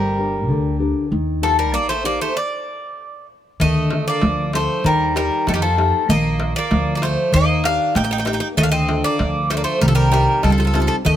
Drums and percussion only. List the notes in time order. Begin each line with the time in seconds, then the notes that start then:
3.60 darbuka dum
3.75 darbuka tek
3.90 darbuka tek
4.07 darbuka tek
4.22 darbuka tek
4.53 darbuka tek
4.84 darbuka dum
5.00 darbuka tek
5.16 darbuka tek
5.32 darbuka tek
5.47 darbuka tek
5.78 darbuka tek
6.09 darbuka dum
6.25 darbuka tek
6.40 darbuka tek
6.55 darbuka tek
6.71 darbuka tek
7.02 darbuka tek
7.33 darbuka dum
7.49 darbuka tek
7.64 darbuka tek
7.95 darbuka tek
8.26 darbuka tek
8.58 darbuka dum
8.89 darbuka tek
9.04 darbuka tek
9.19 darbuka tek
9.50 darbuka tek
9.81 darbuka dum
9.97 darbuka tek
10.12 darbuka tek
10.28 darbuka tek
10.43 darbuka tek
10.74 darbuka tek
11.05 darbuka dum